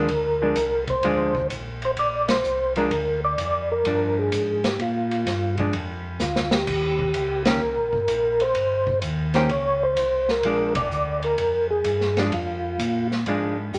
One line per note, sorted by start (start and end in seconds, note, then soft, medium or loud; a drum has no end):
0.00 0.84 A#4 medium
0.08 0.54 D2 medium
0.08 kick soft
0.08 ride medium
0.42 0.55 F3 medium
0.42 0.55 G#3 medium
0.42 0.56 D4 medium
0.55 1.01 C2 medium
0.55 kick soft
0.55 hi-hat pedal medium
0.55 ride medium
0.87 1.47 C5 medium
0.87 kick medium
0.87 ride soft
1.03 1.49 D2 medium
1.03 1.32 F3 medium
1.03 1.32 G#3 medium
1.03 1.33 D4 medium
1.03 kick soft
1.03 ride medium
1.35 kick medium
1.50 1.95 A#1 medium
1.50 kick soft
1.50 hi-hat pedal soft
1.50 ride medium
1.82 1.91 C5 medium
1.82 ride soft
1.97 2.43 A#1 medium
1.97 2.28 D5 loud
1.97 kick soft
1.97 ride medium
2.28 2.74 C5 loud
2.28 snare medium
2.28 ride medium
2.44 2.90 C2 medium
2.44 hi-hat pedal medium
2.76 2.90 F3 medium
2.76 2.90 G#3 medium
2.76 2.91 D4 medium
2.76 3.20 A#4 medium
2.76 ride soft
2.91 3.37 D2 medium
2.91 kick soft
2.91 ride medium
3.25 3.72 D5 medium
3.38 3.84 F2 medium
3.38 kick soft
3.38 hi-hat pedal soft
3.38 ride medium
3.72 4.19 A#4 medium
3.85 4.31 G2 medium
3.85 4.58 F3 medium
3.85 4.59 D4 medium
3.85 kick soft
3.85 ride medium
4.19 4.66 G#4 medium
4.32 4.78 G#2 medium
4.32 kick soft
4.32 hi-hat pedal medium
4.32 ride medium
4.64 4.80 G4 medium
4.64 snare medium
4.64 ride soft
4.79 5.25 A#2 medium
4.79 5.55 F4 medium
4.79 kick soft
4.79 ride medium
5.11 ride soft
5.26 5.72 G2 medium
5.26 kick soft
5.26 snare soft
5.26 hi-hat pedal soft
5.26 ride medium
5.57 5.72 F3 soft
5.57 5.73 G#3 medium
5.57 5.73 D4 medium
5.57 kick soft
5.57 ride soft
5.73 6.19 F2 medium
5.73 kick soft
5.73 ride medium
6.19 6.66 D2 medium
6.19 6.50 F4 medium
6.19 snare soft
6.19 hi-hat pedal medium
6.36 snare medium
6.51 7.43 G4 medium
6.51 snare medium
6.67 7.13 D#2 medium
6.67 kick medium
6.67 crash medium
6.99 kick medium
7.14 7.60 C#2 medium
7.14 kick soft
7.14 hi-hat pedal soft
7.14 ride medium
7.45 7.60 D#3 medium
7.45 7.60 A#3 medium
7.45 7.60 C#4 medium
7.45 7.61 G4 medium
7.45 8.44 A#4 medium
7.45 snare medium
7.45 ride medium
7.62 7.77 C2 medium
7.78 7.93 A#1 medium
7.93 8.07 G1 medium
7.93 kick soft
8.08 8.54 A#1 medium
8.08 kick soft
8.08 hi-hat pedal medium
8.08 ride medium
8.40 8.99 C5 loud
8.40 ride soft
8.55 9.01 G1 medium
8.55 kick soft
8.55 ride medium
8.87 kick medium
9.02 9.48 D#2 medium
9.02 kick soft
9.02 hi-hat pedal medium
9.02 ride medium
9.34 9.49 D#3 medium
9.34 9.49 A#3 medium
9.34 9.49 C#4 medium
9.34 9.49 G4 medium
9.34 9.49 C5 medium
9.34 snare soft
9.34 ride soft
9.49 9.95 C#2 medium
9.49 9.83 C#5 medium
9.49 kick soft
9.49 ride soft
9.83 10.31 C5 loud
9.96 10.42 C2 medium
9.96 kick soft
9.96 hi-hat pedal medium
9.96 ride medium
10.29 10.73 A#4 loud
10.29 snare soft
10.43 10.89 A#1 medium
10.43 10.73 F3 medium
10.43 10.73 G#3 medium
10.43 10.74 D4 medium
10.43 kick soft
10.43 ride medium
10.75 11.20 D5 loud
10.75 kick medium
10.75 ride medium
10.90 11.36 D2 medium
10.90 hi-hat pedal soft
11.22 11.67 A#4 medium
11.22 ride soft
11.38 11.83 F2 medium
11.38 kick soft
11.38 ride medium
11.70 12.19 G#4 medium
11.84 12.31 G2 medium
11.84 kick soft
11.84 hi-hat pedal medium
11.84 ride medium
12.01 snare soft
12.17 12.31 F3 medium
12.17 12.32 G#3 medium
12.17 12.32 D4 medium
12.17 12.25 G4 medium
12.17 snare soft
12.17 ride soft
12.32 12.78 F2 medium
12.32 13.07 F4 medium
12.32 kick soft
12.32 ride medium
12.79 13.25 A#2 medium
12.79 kick soft
12.79 hi-hat pedal soft
12.79 ride medium
13.12 snare soft
13.26 13.72 G#2 medium
13.26 13.55 F3 medium
13.26 13.56 G#3 medium
13.26 13.56 D4 medium
13.26 kick soft
13.26 ride medium
13.73 13.79 G2 medium
13.73 13.79 G4 medium
13.73 hi-hat pedal medium